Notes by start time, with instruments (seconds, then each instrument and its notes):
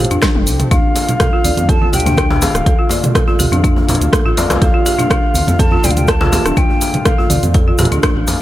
Already playing: analog synth pad F3 C4 G4 A4, flute F5
0.00 marimba G4
0.05 closed hi-hat
0.11 detuned saw bass F2, marimba D4, closed hi-hat, high conga, shaker
0.22 marimba D4, kick, cross-stick, snare, closed hi-hat, shaker
0.35 detuned saw bass F1, high tom, muted conga
0.47 detuned saw bass C2, open hi-hat, shaker
0.60 closed hi-hat, mid tom, high conga, shaker
0.71 detuned saw bass D2, analog synth pad D3 A3 F4 F5, marimba D4, flute F5, kick, closed hi-hat, muted conga, djembe tone, shaker
0.96 open hi-hat, djembe slap, shaker
1.08 closed hi-hat, low conga, shaker
1.20 marimba A4, kick, cross-stick, closed hi-hat, muted conga, djembe tone, low conga, shaker
1.33 marimba F4
1.44 detuned saw bass D2, marimba D5, open hi-hat, high conga, shaker
1.57 detuned saw bass F2, closed hi-hat, muted conga, high conga, djembe tone, shaker
1.69 marimba A4, flute A5, kick, closed hi-hat, high conga, shaker
1.82 marimba F4, high conga
1.93 detuned saw bass D2, marimba G4, flute G5, open hi-hat, muted conga, low conga, shaker
2.00 closed hi-hat
2.06 marimba D4, closed hi-hat, mid tom, djembe tone, shaker
2.17 marimba D4, kick, cross-stick, closed hi-hat, shaker
2.31 mid tom, djembe slap, muted conga
2.42 flute F5, open hi-hat, djembe slap, djembe tone, high conga, shaker
2.55 detuned saw bass D1, cross-stick, closed hi-hat, high conga, shaker
2.66 detuned saw bass D2, marimba A4, kick, closed hi-hat, muted conga, shaker
2.79 marimba F4
2.89 marimba D5, open hi-hat, djembe slap, djembe tone, shaker
3.03 closed hi-hat, mid tom, low conga, shaker
3.15 marimba A4, kick, cross-stick, closed hi-hat, muted conga, low conga, shaker
3.28 marimba F4, djembe tone
3.39 detuned saw bass D2, marimba G4, mid tom, open hi-hat, high conga, shaker
3.51 detuned saw bass F2, marimba D4, closed hi-hat, muted conga, high conga, shaker
3.64 marimba D4, kick, closed hi-hat, shaker
3.76 djembe tone
3.88 detuned saw bass F2, mid tom, open hi-hat, muted conga, djembe slap, low conga, shaker
3.95 closed hi-hat
4.01 detuned saw bass D2, closed hi-hat, high conga, shaker
4.13 marimba A4, kick, cross-stick, closed hi-hat, djembe tone, shaker
4.26 detuned saw bass A1, marimba F4, muted conga
4.37 detuned saw bass F2, marimba D5, open hi-hat, djembe slap, shaker
4.50 detuned saw bass C2, cross-stick, closed hi-hat, djembe slap, high conga, shaker
4.62 detuned saw bass D2, marimba A4, flute F5, kick, closed hi-hat, muted conga, djembe tone, shaker
4.74 marimba F4
4.86 marimba G4, open hi-hat, djembe slap, shaker
4.99 marimba D4, closed hi-hat, djembe tone, low conga, shaker
5.10 marimba D4, kick, cross-stick, closed hi-hat, muted conga, low conga, shaker
5.34 detuned saw bass D2, open hi-hat, high conga, shaker
5.47 detuned saw bass F2, closed hi-hat, muted conga, high conga, djembe tone, shaker
5.59 marimba A4, flute A5, kick, closed hi-hat, high conga, shaker
5.71 marimba F4, high conga
5.84 detuned saw bass D2, marimba D5, flute G5, open hi-hat, muted conga, djembe tone, low conga, shaker
5.90 flute F5, closed hi-hat
5.97 flute G5, closed hi-hat, mid tom, shaker
6.07 marimba A4, flute A5, kick, cross-stick, closed hi-hat, shaker
6.21 marimba F4, mid tom, djembe slap, muted conga
6.32 marimba G4, open hi-hat, djembe slap, high conga, djembe tone, shaker
6.45 detuned saw bass D1, marimba D4, cross-stick, closed hi-hat, high conga, shaker
6.57 detuned saw bass D2, marimba D4, flute G5, kick, closed hi-hat, muted conga, shaker
6.70 djembe tone
6.81 open hi-hat, djembe slap, shaker
6.93 closed hi-hat, mid tom, low conga, shaker
7.05 marimba A4, flute F5, kick, cross-stick, closed hi-hat, muted conga, low conga, shaker
7.18 marimba F4, djembe tone
7.30 detuned saw bass D2, marimba D5, mid tom, open hi-hat, high conga, shaker
7.43 detuned saw bass F2, closed hi-hat, muted conga, high conga, shaker
7.54 marimba A4, kick, closed hi-hat, djembe tone, shaker
7.68 marimba F4
7.78 detuned saw bass F2, marimba G4, mid tom, open hi-hat, djembe slap, muted conga, low conga, shaker
7.85 closed hi-hat
7.91 detuned saw bass D2, marimba D4, closed hi-hat, high conga, shaker
8.03 marimba D4, kick, cross-stick, closed hi-hat, djembe tone, shaker
8.16 detuned saw bass A1, muted conga
8.27 detuned saw bass F2, open hi-hat, djembe slap, shaker